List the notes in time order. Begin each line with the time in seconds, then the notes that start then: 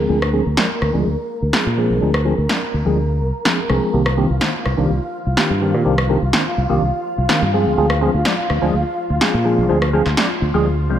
Already playing: A#4 A#5
0.08 D2 F3 G#3 C4 D4 G#4
0.22 cross-stick
0.33 F3 G#3 C4 D4 G#4
0.46 D2
0.57 F3 G#3 C4 D4 D5, snare
0.82 D2, cross-stick
0.93 D2 F3 G#3 C4 D4 G#4
1.06 D2
1.42 D2
1.53 F3 G#3 C4 D4 G#4, snare
1.66 A#2
1.78 F3 G#3 C4 D4 G#4
1.90 C2
2.01 D2 F3 G#3 C4 D4 G#4
2.14 cross-stick
2.25 F3 G#3 C4 D4 G#4
2.38 D2
2.49 F3 G#3 C4 D4 D5, snare
2.74 D2
2.85 D2 F3 G#3 C4 D4 G#4
3.22 C2
3.45 F3 G#3 C4 D4 G#4, snare
3.69 C2 F3 G#3 C4 D4 G#4, cross-stick
3.93 C2 D#3 A#3 C4 D4 F4 G4 F5, maracas
4.06 cross-stick
4.17 D#3 A#3 C4 D4 G4
4.30 C2, maracas
4.41 D#3 A#3 C4 D4 C5, snare
4.66 C2, cross-stick
4.77 C2 D#3 A#3 C4 D4 G4, maracas
4.90 C2, maracas
5.02 maracas
5.25 C2, maracas
5.37 D#3 A#3 C4 D4 G4, snare
5.50 G2
5.61 D#3 A#3 C4 D4 G4
5.74 A#2, maracas
5.85 C2 D#3 A#3 C4 D4 G4, maracas
5.98 cross-stick
6.09 D#3 A#3 C4 D4 G4
6.21 C2, maracas
6.33 D#3 A#3 C4 D4 C5, snare
6.58 C2
6.69 C2 D#3 A#3 C4 D4 G4, maracas
6.81 C2, maracas
6.93 maracas
7.18 C2, maracas
7.29 D#3 A#3 C4 D4 G4, snare
7.42 G2
7.53 F3 G#3 C4 D4 G#4
7.66 D2, maracas
7.78 D2 F3 G#3 C4 D4 G#4, maracas
7.90 cross-stick
8.01 F3 G#3 C4 D4 G#4
8.14 D2, maracas
8.25 F3 G#3 C4 D4 D5, snare
8.50 D2, cross-stick
8.61 D2 F3 G#3 C4 D4 G#4, maracas
8.73 D2, maracas
8.87 maracas
9.10 D2, maracas
9.21 F3 G#3 C4 D4 G#4, snare
9.34 A#2
9.44 F3 G#3 C4 D4 G#4
9.58 C2, maracas
9.69 D2 F3 G#3 C4 D4 G#4, maracas
9.82 cross-stick, maracas
9.93 F3 G#3 C4 D4 G#4
10.06 D2, snare, maracas
10.17 F3 G#3 C4 D4 D5, snare
10.42 D2
10.54 D2 F3 G#3 C4 D4 G#4, maracas
10.65 maracas
10.78 maracas
10.90 C2 F3 G#3 C4 D4 C5